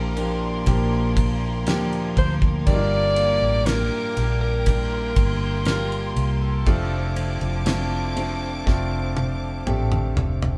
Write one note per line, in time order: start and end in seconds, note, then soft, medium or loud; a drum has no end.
0.00 0.63 A#1 medium
0.00 0.13 A#2 medium
0.00 2.66 A#2 medium
0.00 0.16 F3 loud
0.00 0.16 A#3 medium
0.00 0.16 D4 medium
0.00 0.17 D4 medium
0.00 2.69 F4 loud
0.00 0.15 G4 medium
0.00 0.17 A#4 medium
0.00 0.62 A#4 medium
0.00 6.63 A#4 medium
0.00 2.64 D5 medium
0.00 10.58 F5 medium
0.00 2.64 C6 medium
0.16 0.64 F3 medium
0.16 0.64 A#3 medium
0.16 3.16 A#3 medium
0.16 3.67 D4 medium
0.16 0.65 D4 medium
0.16 0.65 G4 medium
0.16 1.66 A#4 medium
0.16 ride medium
0.66 1.67 A#1 medium
0.66 1.62 F3 medium
0.66 1.62 A#3 medium
0.66 1.62 D4 medium
0.66 1.62 G4 loud
0.66 kick medium
0.66 snare soft
0.66 ride medium
1.17 kick loud
1.17 ride medium
1.66 2.13 D2 loud
1.66 2.62 F3 medium
1.66 2.62 A#3 medium
1.66 2.62 D4 medium
1.66 2.62 G4 loud
1.66 2.67 A#4 medium
1.66 snare loud
1.66 ride medium
1.93 ride soft
2.17 2.63 D2 loud
2.17 2.34 C5 loud
2.17 kick medium
2.17 ride soft
2.42 kick medium
2.66 3.38 G1 loud
2.66 6.67 G2 medium
2.66 4.13 G2 medium
2.66 4.13 D3 medium
2.66 3.62 G3 loud
2.66 3.62 A#3 medium
2.66 3.62 D4 medium
2.66 2.74 D#4 medium
2.66 4.17 A#4 medium
2.66 3.68 D5 loud
2.66 6.64 G5 medium
2.66 4.65 D6 medium
2.66 kick loud
2.66 ride medium
2.74 3.66 F4 loud
3.16 4.15 A#3 medium
3.16 ride medium
3.42 3.88 A1 medium
3.66 4.14 G3 medium
3.66 4.15 A#3 medium
3.66 4.15 D4 medium
3.66 4.15 F4 medium
3.66 4.41 A#4 loud
3.66 snare loud
3.66 ride medium
4.17 5.13 A#1 medium
4.17 4.64 G3 medium
4.17 6.77 A#3 medium
4.17 4.65 A#3 medium
4.17 7.19 D4 medium
4.17 4.65 D4 medium
4.17 4.65 G4 medium
4.17 5.65 A#4 medium
4.17 ride medium
4.41 5.63 A#4 loud
4.66 5.62 G3 medium
4.66 5.62 A#3 medium
4.66 5.62 D4 medium
4.66 5.62 G4 medium
4.66 6.65 C6 medium
4.66 kick medium
4.66 snare soft
4.66 ride medium
5.16 6.13 G1 loud
5.16 kick loud
5.16 ride medium
5.65 6.62 G3 medium
5.65 6.62 A#3 medium
5.65 6.62 D4 medium
5.65 6.63 F4 medium
5.65 6.11 A#4 medium
5.65 6.67 A#4 medium
5.65 snare loud
5.65 ride medium
5.92 ride soft
6.16 6.63 C2 medium
6.16 ride medium
6.42 7.38 A4 medium
6.65 7.38 F1 loud
6.65 8.13 C3 medium
6.65 10.58 F3 medium
6.65 7.62 A3 medium
6.65 7.62 C4 medium
6.65 7.62 D4 medium
6.65 7.62 F4 loud
6.65 8.17 A4 medium
6.65 10.58 C5 medium
6.65 10.58 A5 medium
6.65 10.58 D6 medium
6.65 kick loud
6.65 ride medium
7.16 8.16 C4 medium
7.16 ride medium
7.41 8.63 F1 loud
7.41 ride soft
7.66 8.14 A3 medium
7.66 8.14 C4 medium
7.66 8.14 D4 medium
7.66 8.15 F4 loud
7.66 snare loud
7.66 ride medium
8.16 8.64 A3 medium
8.16 8.64 C4 medium
8.16 10.58 C4 medium
8.16 8.64 D4 medium
8.16 10.58 D4 soft
8.16 8.65 F4 medium
8.16 9.65 A4 medium
8.16 ride medium
8.66 9.63 F1 loud
8.66 9.61 A3 medium
8.66 9.62 C4 medium
8.66 9.62 D4 medium
8.66 9.62 F4 loud
8.66 kick medium
8.66 snare medium
9.17 high tom medium
9.66 10.18 A1 medium
9.66 10.58 A3 medium
9.66 10.58 C4 medium
9.66 10.58 D4 medium
9.66 10.58 G4 medium
9.66 10.58 A4 medium
9.66 mid tom medium
9.92 mid tom medium
10.16 10.58 F1 medium
10.16 floor tom medium
10.42 floor tom medium